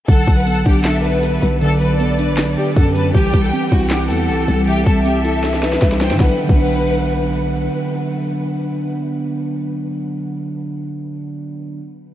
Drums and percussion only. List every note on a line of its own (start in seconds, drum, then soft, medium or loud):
0.09 kick loud
0.09 closed hi-hat medium
0.28 kick loud
0.28 closed hi-hat medium
0.47 closed hi-hat medium
0.66 kick medium
0.66 closed hi-hat medium
0.84 snare loud
0.84 clap medium
0.84 closed hi-hat medium
1.04 closed hi-hat medium
1.23 closed hi-hat medium
1.42 closed hi-hat medium
1.62 closed hi-hat medium
1.81 closed hi-hat medium
2.00 closed hi-hat medium
2.19 closed hi-hat medium
2.37 snare loud
2.37 clap medium
2.37 closed hi-hat medium
2.76 kick loud
2.76 closed hi-hat medium
2.95 closed hi-hat medium
3.14 kick loud
3.14 closed hi-hat medium
3.33 kick loud
3.33 closed hi-hat medium
3.53 closed hi-hat medium
3.72 kick medium
3.72 closed hi-hat medium
3.90 snare loud
3.90 clap medium
3.90 closed hi-hat medium
4.10 closed hi-hat medium
4.29 closed hi-hat medium
4.48 closed hi-hat medium
4.67 closed hi-hat medium
4.86 kick loud
4.86 closed hi-hat medium
5.05 closed hi-hat medium
5.25 closed hi-hat medium
5.44 snare medium
5.44 closed hi-hat medium
5.54 snare medium
5.63 snare medium
5.73 snare medium
5.82 kick loud
5.82 snare medium
5.82 closed hi-hat medium
5.92 snare medium
6.01 snare loud
6.01 closed hi-hat medium
6.11 snare loud
6.20 kick loud
6.20 snare medium
6.49 kick loud
6.49 crash medium